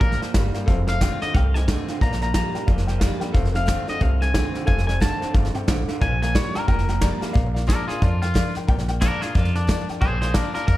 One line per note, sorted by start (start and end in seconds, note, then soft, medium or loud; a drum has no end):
0.00 0.18 A1 medium
0.00 0.33 A2 medium
0.00 0.19 A#2 medium
0.00 0.20 F3 medium
0.00 0.12 A#4 medium
0.00 0.20 A#4 loud
0.00 0.13 D5 medium
0.00 0.13 F5 loud
0.00 kick loud
0.00 snare soft
0.12 snare soft
0.20 0.33 A#2 medium
0.20 0.33 F3 medium
0.20 0.29 A#4 medium
0.20 0.29 D5 medium
0.20 0.29 F5 medium
0.20 muted upright bass stroke medium
0.20 snare soft
0.33 0.52 G1 medium
0.33 0.66 G2 medium
0.33 0.53 A#2 medium
0.33 0.53 G3 medium
0.33 0.46 A#4 medium
0.33 0.46 D5 medium
0.33 0.47 F5 medium
0.33 kick medium
0.33 snare loud
0.33 hi-hat pedal medium
0.53 0.67 A#2 medium
0.53 0.67 G3 medium
0.53 0.62 A#4 medium
0.53 0.62 D5 medium
0.53 0.62 F5 medium
0.53 muted upright bass stroke medium
0.53 snare soft
0.66 1.05 F1 loud
0.66 1.32 F2 medium
0.66 0.87 F2 medium
0.66 0.87 C3 medium
0.66 0.79 A4 loud
0.66 0.79 C5 loud
0.66 0.80 F5 loud
0.66 kick loud
0.66 snare soft
0.87 1.00 F2 medium
0.87 1.00 C3 medium
0.87 0.95 A4 medium
0.87 0.96 C5 medium
0.87 1.21 F5 medium
0.87 0.96 F5 medium
0.87 snare soft
1.01 1.20 F2 medium
1.01 1.20 D3 loud
1.01 1.33 D#3 medium
1.01 1.33 A3 medium
1.01 1.33 C4 medium
1.01 1.34 F4 loud
1.01 1.13 A4 medium
1.01 1.14 C5 medium
1.01 1.14 G5 medium
1.01 kick medium
1.01 snare loud
1.01 hi-hat pedal medium
1.21 1.33 F2 medium
1.21 1.33 D3 medium
1.21 1.29 A4 medium
1.21 1.29 C5 medium
1.21 1.34 D#5 medium
1.21 1.29 F5 medium
1.21 muted upright bass stroke medium
1.21 snare soft
1.34 1.72 C2 medium
1.34 1.53 F2 medium
1.34 1.99 C3 medium
1.34 1.53 C3 medium
1.34 1.46 A4 medium
1.34 1.47 C5 medium
1.34 1.54 F5 medium
1.34 1.47 G5 loud
1.34 kick loud
1.34 snare soft
1.54 1.67 F2 medium
1.54 1.67 C3 medium
1.54 1.62 A4 medium
1.54 1.63 C5 medium
1.54 1.63 D#5 medium
1.54 2.00 G#5 medium
1.54 snare soft
1.68 1.86 F2 medium
1.68 1.87 D3 loud
1.68 1.87 D#3 medium
1.68 1.88 A3 medium
1.68 1.88 C4 medium
1.68 1.87 F4 medium
1.68 1.80 A4 medium
1.68 1.80 C5 medium
1.68 1.80 D#5 medium
1.68 kick medium
1.68 snare loud
1.68 hi-hat pedal medium
1.88 2.00 F2 medium
1.88 2.01 D3 medium
1.88 2.01 C4 soft
1.88 2.01 F4 medium
1.88 1.96 A4 medium
1.88 1.96 C5 medium
1.88 1.97 F5 medium
1.88 snare soft
2.01 2.39 A#1 medium
2.01 2.20 A#2 medium
2.01 2.66 A#2 medium
2.01 2.20 F3 medium
2.01 2.14 A#4 loud
2.01 2.14 D5 medium
2.01 2.14 F5 loud
2.01 2.21 A#5 medium
2.01 kick loud
2.01 snare soft
2.12 snare soft
2.21 2.34 A#2 medium
2.21 2.34 F3 medium
2.21 2.29 A#4 medium
2.21 2.29 D5 medium
2.21 2.30 F5 medium
2.21 2.33 A#5 medium
2.21 snare soft
2.34 2.53 A#2 medium
2.34 2.54 F3 medium
2.34 2.53 G3 medium
2.34 2.54 A#3 medium
2.34 2.55 D4 medium
2.34 2.54 F4 medium
2.34 2.47 F5 medium
2.34 2.67 A#5 medium
2.34 kick medium
2.34 snare loud
2.34 hi-hat pedal medium
2.53 2.67 A#2 medium
2.53 2.67 G3 medium
2.53 2.69 D4 soft
2.53 2.68 F4 medium
2.53 2.62 A#4 medium
2.53 2.62 D5 medium
2.53 2.63 G5 medium
2.53 muted upright bass stroke medium
2.53 snare soft
2.66 3.06 F1 medium
2.66 3.33 F2 medium
2.66 2.86 A#2 medium
2.66 2.87 F3 loud
2.66 2.79 A#4 medium
2.66 2.79 D5 medium
2.66 2.80 F5 loud
2.66 kick loud
2.66 snare soft
2.78 snare soft
2.86 3.00 A#2 medium
2.86 3.01 F3 medium
2.86 2.95 A#4 medium
2.86 2.95 D5 medium
2.86 2.96 G5 medium
2.86 snare soft
2.98 3.20 A#2 medium
2.98 3.21 F3 medium
2.98 3.12 A#4 medium
2.98 3.12 D5 medium
2.98 3.13 F5 loud
2.98 kick medium
2.98 snare loud
2.98 hi-hat pedal medium
3.02 3.20 G3 medium
3.02 3.22 A#3 medium
3.02 3.22 D4 loud
3.02 3.20 F4 loud
3.19 3.34 A#2 medium
3.19 3.34 G3 medium
3.19 3.35 D4 soft
3.19 3.34 F4 medium
3.19 3.28 A#4 medium
3.19 3.29 D5 medium
3.19 3.29 G5 medium
3.19 muted upright bass stroke medium
3.19 snare soft
3.33 3.72 F1 loud
3.33 3.99 F2 medium
3.33 3.53 F2 medium
3.33 3.53 C3 medium
3.33 3.46 A4 loud
3.33 3.46 C5 loud
3.33 3.46 F5 loud
3.33 kick loud
3.33 snare soft
3.45 snare soft
3.52 3.67 F2 medium
3.52 3.67 C3 medium
3.52 3.62 A4 medium
3.52 3.62 C5 medium
3.52 3.62 F5 medium
3.52 3.88 F5 medium
3.52 snare soft
3.66 3.86 F2 medium
3.66 3.87 D3 loud
3.66 3.86 D#3 medium
3.66 3.87 A3 medium
3.66 3.87 C4 medium
3.66 3.86 F4 loud
3.66 3.79 A4 medium
3.66 3.80 C5 medium
3.66 3.80 D5 medium
3.66 kick medium
3.66 snare loud
3.66 hi-hat pedal medium
3.87 4.00 F2 medium
3.87 4.01 D3 medium
3.87 4.01 C4 medium
3.87 4.00 F4 medium
3.87 3.95 A4 medium
3.87 3.95 C5 medium
3.87 3.96 D5 medium
3.87 4.02 D#5 loud
3.87 muted upright bass stroke medium
3.87 snare soft
4.00 4.39 C2 medium
4.00 4.20 F2 medium
4.00 4.65 C3 medium
4.00 4.20 C3 loud
4.00 4.13 A4 medium
4.00 4.13 C5 medium
4.00 4.13 F5 loud
4.00 4.21 F5 loud
4.00 kick loud
4.00 snare soft
4.21 4.34 F2 medium
4.21 4.34 C3 medium
4.21 4.29 A4 medium
4.21 4.29 C5 medium
4.21 4.30 F5 medium
4.21 4.66 G#5 medium
4.21 snare soft
4.33 4.53 F2 medium
4.33 4.53 D3 loud
4.33 4.67 D#3 medium
4.33 4.67 A3 medium
4.33 4.68 C4 loud
4.33 4.68 F4 medium
4.33 4.46 A4 medium
4.33 4.47 C5 medium
4.33 4.47 F5 medium
4.33 kick medium
4.33 snare loud
4.33 hi-hat pedal medium
4.53 4.67 F2 medium
4.53 4.67 D3 medium
4.53 4.62 A4 medium
4.53 4.62 C5 medium
4.53 4.62 F5 medium
4.53 muted upright bass stroke medium
4.53 snare soft
4.65 5.06 F1 medium
4.65 5.32 F2 loud
4.65 4.86 F2 medium
4.65 4.87 C3 medium
4.65 4.79 A4 loud
4.65 4.79 C5 medium
4.65 4.80 F5 loud
4.65 4.86 G#5 medium
4.65 kick loud
4.65 snare soft
4.78 snare soft
4.87 5.00 F2 medium
4.87 5.00 C3 medium
4.87 4.95 A4 medium
4.87 4.96 C5 medium
4.87 4.96 D5 medium
4.87 5.00 G#5 medium
4.87 snare soft
5.00 5.20 F2 medium
5.00 5.20 D3 loud
5.00 5.33 D#3 medium
5.00 5.33 A3 medium
5.00 5.34 C4 medium
5.00 5.34 F4 medium
5.00 5.13 A4 medium
5.00 5.13 C5 medium
5.00 5.14 F5 medium
5.00 5.34 A5 loud
5.00 kick medium
5.00 snare loud
5.00 hi-hat pedal medium
5.20 5.33 F2 medium
5.20 5.34 D3 medium
5.20 5.29 A4 medium
5.20 5.29 C5 medium
5.20 5.29 F5 medium
5.20 muted upright bass stroke medium
5.20 snare soft
5.33 5.52 G1 medium
5.33 5.53 F2 medium
5.33 5.67 G2 medium
5.33 5.53 C3 medium
5.33 5.46 A4 medium
5.33 5.46 C5 medium
5.33 5.46 F5 loud
5.33 kick loud
5.33 snare soft
5.45 snare soft
5.54 5.67 F2 medium
5.54 5.67 C3 medium
5.54 5.62 A4 medium
5.54 5.63 C5 medium
5.54 5.63 G5 medium
5.54 muted upright bass stroke medium
5.54 snare soft
5.67 5.85 A1 medium
5.67 5.86 F2 medium
5.67 6.00 A2 medium
5.67 5.87 D3 loud
5.67 5.80 A4 medium
5.67 5.80 C5 medium
5.67 5.80 F5 medium
5.67 kick medium
5.67 snare loud
5.67 hi-hat pedal medium
5.88 6.00 F2 medium
5.88 6.00 D3 medium
5.88 5.96 A4 medium
5.88 5.96 C5 medium
5.88 5.97 F5 medium
5.88 muted upright bass stroke medium
5.88 snare soft
6.00 6.39 A#1 medium
6.00 6.20 A#2 medium
6.00 6.66 A#2 medium
6.00 6.20 F3 medium
6.00 6.13 A#4 loud
6.00 6.13 D5 medium
6.00 6.13 F5 loud
6.00 6.21 G#5 loud
6.00 kick loud
6.00 snare soft
6.22 6.34 A#2 medium
6.22 6.34 F3 medium
6.22 6.30 A#4 medium
6.22 6.30 D5 medium
6.22 6.30 F5 medium
6.22 6.35 G#5 medium
6.22 snare soft
6.34 6.53 A#2 medium
6.34 6.54 F3 medium
6.34 6.53 G3 medium
6.34 6.54 A#3 medium
6.34 6.55 D4 medium
6.34 6.53 F4 loud
6.34 6.47 A#4 medium
6.34 6.55 C#5 medium
6.34 6.47 D5 medium
6.34 kick medium
6.34 snare loud
6.34 hi-hat pedal medium
6.54 6.67 A#2 medium
6.54 6.67 G3 medium
6.54 6.69 D4 soft
6.54 6.67 F4 medium
6.54 6.63 A#4 medium
6.54 6.67 A#4 loud
6.54 6.63 D5 medium
6.54 6.63 G5 medium
6.54 muted upright bass stroke medium
6.54 snare soft
6.67 7.06 F1 medium
6.67 7.33 F2 medium
6.67 6.87 A#2 medium
6.67 6.87 F3 medium
6.67 6.80 A#4 medium
6.67 7.33 A#4 loud
6.67 6.80 D5 medium
6.67 6.80 G5 loud
6.67 kick loud
6.67 snare soft
6.79 snare soft
6.88 7.00 A#2 medium
6.88 7.01 F3 medium
6.88 6.96 A#4 medium
6.88 6.96 D5 medium
6.88 6.97 G5 medium
6.88 snare soft
7.01 7.20 A#2 medium
7.01 7.21 F3 medium
7.01 7.20 G3 medium
7.01 7.21 A#3 medium
7.01 7.21 D4 medium
7.01 7.20 F4 medium
7.01 7.13 A#4 medium
7.01 7.14 D5 medium
7.01 7.14 F5 medium
7.01 kick medium
7.01 snare loud
7.01 hi-hat pedal medium
7.21 7.34 A#2 medium
7.21 7.34 G3 medium
7.21 7.35 D4 soft
7.21 7.34 F4 medium
7.21 7.29 A#4 medium
7.21 7.29 D5 medium
7.21 7.30 F5 loud
7.21 muted upright bass stroke medium
7.21 snare soft
7.32 7.99 A#2 medium
7.32 7.46 A#4 loud
7.32 7.46 D5 loud
7.32 7.46 F5 loud
7.32 kick loud
7.36 7.73 A#1 loud
7.36 snare soft
7.53 7.62 A#4 medium
7.53 7.63 D5 medium
7.53 7.63 F5 loud
7.53 snare soft
7.67 7.87 F3 medium
7.67 7.87 A#3 medium
7.67 7.87 D4 medium
7.67 7.87 F4 medium
7.67 7.88 A#4 medium
7.67 kick medium
7.67 snare loud
7.67 hi-hat pedal medium
7.88 8.02 D4 soft
7.88 8.02 F4 medium
7.88 8.01 F4 medium
7.88 8.03 G#4 medium
7.88 7.96 A#4 medium
7.88 7.96 D5 medium
7.88 7.97 F5 medium
7.88 muted upright bass stroke medium
7.88 snare soft
8.01 8.66 F2 medium
8.01 8.40 F2 medium
8.01 8.22 D4 medium
8.01 8.21 F4 medium
8.01 8.13 A#4 medium
8.01 8.14 D5 medium
8.01 8.14 F5 medium
8.01 kick loud
8.01 snare soft
8.21 8.54 F4 medium
8.21 8.30 A#4 medium
8.21 8.30 D5 medium
8.21 8.30 G5 medium
8.21 snare soft
8.34 8.54 F3 medium
8.34 8.54 A#3 medium
8.34 8.54 D4 medium
8.34 8.52 F4 medium
8.34 8.47 A#4 medium
8.34 8.47 D5 medium
8.34 8.47 F5 medium
8.34 kick medium
8.34 snare loud
8.34 hi-hat pedal medium
8.54 8.68 D4 soft
8.54 8.67 F4 medium
8.54 8.63 A#4 medium
8.54 8.63 D5 medium
8.54 8.64 G5 medium
8.54 muted upright bass stroke medium
8.54 snare soft
8.67 9.06 A#1 loud
8.67 9.32 A#2 medium
8.67 8.80 A#4 loud
8.67 8.81 D5 loud
8.67 8.81 G5 loud
8.67 kick loud
8.67 snare soft
8.79 snare soft
8.88 8.96 A#4 medium
8.88 8.96 D5 medium
8.88 8.97 G5 loud
8.88 snare soft
9.01 9.21 F3 medium
9.01 9.21 A#3 medium
9.01 9.21 D4 medium
9.01 9.20 F4 loud
9.01 9.22 A#4 medium
9.01 9.14 F5 medium
9.01 kick medium
9.01 snare loud
9.01 hi-hat pedal medium
9.21 9.35 D4 soft
9.21 9.35 F4 medium
9.21 9.34 F4 medium
9.21 9.36 G#4 medium
9.21 9.30 A#4 medium
9.21 9.30 D5 medium
9.21 9.30 F5 medium
9.21 muted upright bass stroke medium
9.21 snare soft
9.35 9.99 F2 medium
9.35 9.73 F2 medium
9.35 9.54 D4 medium
9.35 9.55 F4 loud
9.35 9.47 A#4 medium
9.35 9.47 D5 medium
9.35 9.47 F5 loud
9.35 kick loud
9.35 snare soft
9.45 snare soft
9.55 9.88 D4 medium
9.55 9.63 A#4 medium
9.55 9.64 D5 medium
9.55 9.64 F5 medium
9.55 snare soft
9.67 9.87 F3 medium
9.67 9.88 A#3 loud
9.67 9.88 D4 loud
9.67 9.88 F4 loud
9.67 9.81 A#4 medium
9.67 9.81 D5 medium
9.67 9.81 F5 medium
9.67 kick medium
9.67 snare loud
9.67 hi-hat pedal medium
9.88 10.02 D4 soft
9.88 10.02 F4 medium
9.88 9.96 A#4 medium
9.88 9.97 D5 medium
9.88 9.97 G5 medium
9.88 muted upright bass stroke medium
9.88 snare soft
10.01 10.39 A#1 medium
10.01 10.66 A#2 medium
10.01 10.19 G#4 medium
10.01 10.14 A#4 medium
10.01 10.20 C5 medium
10.01 10.14 D5 medium
10.01 10.14 G5 loud
10.01 kick loud
10.01 snare soft
10.21 10.33 G#4 medium
10.21 10.30 A#4 medium
10.21 10.35 C5 medium
10.21 10.30 D5 medium
10.21 10.30 F5 medium
10.21 snare soft
10.34 10.54 F3 medium
10.34 10.55 A#3 medium
10.34 10.53 D4 medium
10.34 10.54 D4 loud
10.34 10.53 F4 medium
10.34 10.54 A#4 medium
10.34 10.47 A#4 medium
10.34 10.48 F5 medium
10.34 kick medium
10.34 snare loud
10.34 hi-hat pedal medium
10.54 10.67 D4 medium
10.54 10.68 D4 soft
10.54 10.67 F4 medium
10.54 10.66 A#4 medium
10.54 10.63 A#4 medium
10.54 10.63 D5 medium
10.54 10.63 F5 medium
10.54 muted upright bass stroke medium
10.54 snare soft
10.67 10.77 F2 medium
10.67 10.77 A#4 medium
10.67 10.77 A#4 loud
10.67 10.77 D5 medium
10.67 10.77 F5 loud
10.67 kick loud
10.67 snare soft